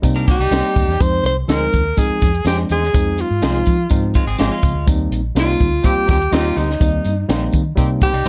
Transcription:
0.02 C3 G3 A#3 C4 D#4, kick, closed hi-hat, tambourine
0.16 D4 A#4, closed hi-hat
0.28 A#3 G4, kick, snare, closed hi-hat, tambourine
0.39 C2 G3 D#4, closed hi-hat
0.51 C2 G3 A#3 C4 D#4 G4 C5, snare, closed hi-hat, tambourine
0.76 D#2, kick, open hi-hat, tambourine
0.87 E2, snare
1.00 F2 F3 G#3 C4 D#4 C5, kick, closed hi-hat, tambourine
1.23 C2 C5, closed hi-hat, tambourine
1.48 D2 F3 G#3 C4 D#4 G#4 A#4 C5, snare, closed hi-hat, tambourine
1.73 D#2, kick, closed hi-hat, tambourine
1.97 F3 G#3 C4 D#4 G#4, kick, closed hi-hat, tambourine
2.09 muted fingered electric bass stroke
2.21 F2, kick, snare, closed hi-hat, tambourine
2.34 closed hi-hat
2.45 F2 F3 G#3 C4 D4 D#4 G4 G#4 C5, snare, closed hi-hat, tambourine
2.69 E2 D#4 G#4 C5, closed hi-hat, tambourine
2.83 snare
2.94 F2 F3 G#3 C4 D#4, kick, closed hi-hat, tambourine
3.18 F4, closed hi-hat, tambourine
3.31 G#2
3.42 C2 F3 G#3 C4 D#4 G#4 C5, snare, closed hi-hat, tambourine
3.66 F3, kick, closed hi-hat, tambourine
3.90 G#2 F3 G#3 C4 D#4, kick, closed hi-hat, tambourine
4.14 G#3 F4, kick, closed hi-hat, tambourine
4.26 G#1 C4 G#4, closed hi-hat
4.38 G#1 F3 G#3 A#3 C4 D#4 F4 G4 G#4 C5, snare, closed hi-hat, tambourine
4.52 G#3 F4
4.63 C#2, kick, closed hi-hat, tambourine
4.74 D2
4.87 D#2 G3 A#3 C4 D#4, kick, closed hi-hat, tambourine
5.11 A#1, closed hi-hat, tambourine
5.35 C2 G3 A#3 C4 D#4 G4 C5, snare, closed hi-hat, tambourine
5.40 F4
5.59 D2, kick, closed hi-hat, tambourine
5.83 D#3 G3 A#3 C4 F4 G4, kick, closed hi-hat, tambourine
5.96 muted fingered electric bass stroke
6.06 D#2 D#3 C4 G4, kick, closed hi-hat, tambourine
6.10 G4, snare
6.22 closed hi-hat
6.31 D#2 D#3 G3 A#3 C4 D#4 F4 G4 C5, snare, closed hi-hat, tambourine
6.56 D2 D#4 G4 C5, open hi-hat, tambourine
6.70 snare
6.80 D#2 G3 A#3 C4 D#4, kick, closed hi-hat, tambourine
7.04 G2, closed hi-hat, tambourine
7.28 A#1 G3 A#3 C4 D#4 G4 C5, snare, closed hi-hat, tambourine
7.52 D#3, kick, closed hi-hat, tambourine
7.76 C3 D#3 G3 A#3 C4 D#4 G4, kick, closed hi-hat, tambourine
8.01 D#3 C4 G4, kick, closed hi-hat, tambourine
8.13 C2 G3 D#4, closed hi-hat
8.25 G3, tambourine

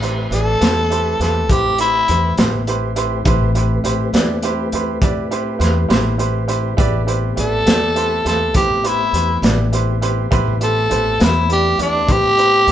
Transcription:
Already playing: A1 A3 C4 G4 B4
0.02 E4 G4 B4 C5, closed hi-hat
0.31 A1 E4 G4 A4 B4 D5, closed hi-hat
0.60 E2 E4 G4 B4 C5, snare, closed hi-hat
0.90 E4 G4 B4 C5, closed hi-hat
1.20 E2 E4 G4 A4 B4 C5, snare, closed hi-hat
1.49 A1 E4 G4 B4 C5, kick, closed hi-hat
1.78 E4 G4 B4 C5, closed hi-hat
2.08 E2 E4 G4 B4 C5, closed hi-hat
2.37 A1 E4 G4 B4 C5, snare, closed hi-hat
2.67 E4 G4 B4 C5, closed hi-hat
2.96 E4 G4 B4 C5, closed hi-hat
3.24 A1 A3 C4 E4 G4 B4 C5, kick, closed hi-hat
3.55 E4 G4 B4 C5, closed hi-hat
3.84 A1 E4 G4 B4 C5, closed hi-hat
4.13 E2 E4 G4 B4 D5, snare, closed hi-hat
4.42 E4 G4 B4 C5, closed hi-hat
4.72 E2 E4 G4 B4 C5, closed hi-hat
5.02 A1 E4 G4 B4 D5, kick, closed hi-hat
5.31 E4 G4 B4 C5, closed hi-hat
5.59 E2 E4 G4 B4 C5, snare, closed hi-hat
5.89 A1 E4 G4 B4 C5, snare, closed hi-hat
6.18 E4 G4 B4 C5, closed hi-hat
6.48 E4 G4 B4 C5, closed hi-hat
6.77 A1 A#3 C4 C#4 E4 G4 G#4 B4 D5, kick, closed hi-hat
7.07 A3 B3 C4 E4 G4 B4 C5, closed hi-hat
7.36 A1 E4 G4 A4 B4 D5, closed hi-hat
7.66 E2 E4 G4 B4 D5, snare, closed hi-hat
7.95 E4 G4 B4 C5, closed hi-hat
8.25 E2 E4 G4 A4 B4 C5, snare, closed hi-hat
8.54 A1 E4 G4 B4 C5, kick, closed hi-hat
8.84 E4 G4 B4 C5, closed hi-hat
9.13 E2 E4 G4 B4 C5, closed hi-hat
9.42 A1 E4 G4 B4 D5, snare, closed hi-hat
9.72 E4 G4 B4 C5, closed hi-hat
10.01 E4 G4 B4 C5, closed hi-hat
10.31 A1 A3 B3 C4 E4 G4 B4 C5, kick, closed hi-hat
10.61 E4 G4 A4 B4 C5, closed hi-hat
10.90 A1 E4 G4 B4 C5, closed hi-hat
11.19 E2 E4 G4 B4 C5, snare, closed hi-hat
11.24 E4
11.49 E4 G4 B4 D5, closed hi-hat
11.79 E2 D4 E4 G4 B4 D5, closed hi-hat
12.07 A1 E4 G4 B4 C5, kick, closed hi-hat
12.12 G4
12.37 E4 G4 B4 C5, closed hi-hat
12.67 E2 E4 G4 B4 C5, snare, closed hi-hat

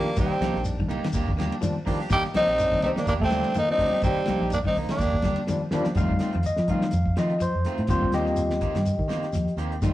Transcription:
Already playing: D#3 G3 A#3
0.16 C2 D#3 G3 A#3 C4 D#4 G4, kick, ride bell, high conga, shekere
0.40 C2 D#3 F3 G3 A#3 D4 D#4 G4, snare, ride bell, high conga, shekere
0.55 A#1, snare
0.65 ride bell, high conga, shekere
0.79 D#3, kick, high conga
0.88 C2 A#3 D#4 G4, ride bell, high conga, low conga, shekere
1.03 D#3, muted fingered electric bass stroke, snare, ride bell
1.13 D#2 A#3 D4 G4, kick, ride bell, shekere
1.28 D#2, kick, low conga
1.38 D3 A#3 D4 G4, snare, ride bell, high conga, shekere
1.50 A#3 D4, ride bell
1.61 D#3 F3 G3 A#3 D4, ride bell, high conga, shekere
1.86 D#3 F3 G3 A#3 D4 G4, kick, open hi-hat, low conga, shekere
2.00 D4 G4, snare
2.10 C2 D#3 G3 A#3 D4 D#4 G4, muted clean electric guitar stroke, kick, ride bell, shekere
2.24 snare
2.34 C2 D#3 F3 G3 A#3 C4 D4 D#4 G4, snare, ride bell, high conga, shekere
2.47 A#1 D#4 G4, ride bell
2.58 D#3 G3 A#3 D4, ride bell, high conga, shekere
2.72 D#3, kick, snare, high conga
2.82 C2 C4 D#4 G4, ride bell, low conga, shekere
2.96 D#3 A#3 D4, muted fingered electric bass stroke, snare
3.06 D#2 A#3 D4 G4, muted clean electric guitar stroke, kick, ride bell, high conga, shekere
3.20 D#2 A3, kick, low conga
3.24 C4
3.29 D3 F3 G3 A#3 D4 G4, snare, ride bell, high conga, shekere
3.44 ride bell
3.54 D#3 A#3 D#4, ride bell, high conga, shekere
3.68 F3 G3 A#3 C4 D4 D#4
3.78 D2 A#3 D4 G4, kick, open hi-hat, low conga, shekere
3.92 D4 G4, high conga
4.02 C2 D#3 A#3 C4 D#4 G4, kick, ride bell, shekere
4.06 G3
4.26 C2 D#3 F3 G3 A#3 D#4 G4, snare, ride bell, high conga, shekere
4.30 D4
4.40 A#1 D#4 G4
4.50 A#3 D4, ride bell, high conga, shekere
4.64 D#3 C4 D#4, kick, high conga
4.75 C2 A#3 D#4, open hi-hat, low conga, shekere
4.89 D#3 A#3 D4, snare, ride bell
4.98 D#2 A#3 G4, muted clean electric guitar stroke, kick, snare, ride bell, high conga, shekere
5.12 D#2, kick
5.22 D3 D4 G4, muted clean electric guitar stroke, kick, snare, ride bell, high conga, shekere
5.36 A#3 D4, ride bell
5.47 D#3 F3 G3 A#3 D4, snare, high conga, shekere
5.71 D#3 F3 G3 A#3 D4 G4, snare, low conga, shekere
5.84 snare, high conga
5.95 F2 D#3 G3 A3 C4 D#4 F4 F5, kick, closed hi-hat, shekere
6.09 D3, kick
6.19 D#3 A3 C4 F4, snare, closed hi-hat, shekere
6.33 F2 D#3, closed hi-hat
6.43 D#5, closed hi-hat, shekere
6.56 F3, snare
6.68 D3 D#3 G3 A3 C4 D#4 F4 F5, kick, closed hi-hat, shekere
6.81 D#3, snare
6.91 F2, closed hi-hat, shekere
7.06 kick
7.16 D#3 F3 A3 C4 F4 D#5, snare, closed hi-hat, shekere
7.30 closed hi-hat
7.40 F3 C5, closed hi-hat, shekere
7.55 F2
7.65 D#3 A3 C4 F4, snare, closed hi-hat, shekere
7.78 A2, closed hi-hat
7.87 D#2 D#3 G3 A#3 C4 F4 G4 C5, kick, closed hi-hat, shekere
8.02 D3, kick
8.12 D#2 D#3 A#3 C4 G4 D#5, snare, closed hi-hat, shekere
8.26 D#3 A#3 C4, snare
8.36 D#2, closed hi-hat, shekere
8.50 snare
8.61 D3 D#3 A#3 C4 G4, kick, closed hi-hat, shekere
8.74 G2 D#3, snare, closed hi-hat
8.85 closed hi-hat, shekere
8.99 D#3, kick
9.08 D#3 A#3 C4 G4, snare, closed hi-hat, shekere
9.23 snare, closed hi-hat
9.33 D#2 F3, closed hi-hat, shekere
9.48 closed hi-hat
9.57 D#2 D#3 A#3 C4 G4, closed hi-hat, shekere
9.72 closed hi-hat
9.82 F2 D#3 G3 A3 C4 D#4 F4, kick, closed hi-hat, shekere

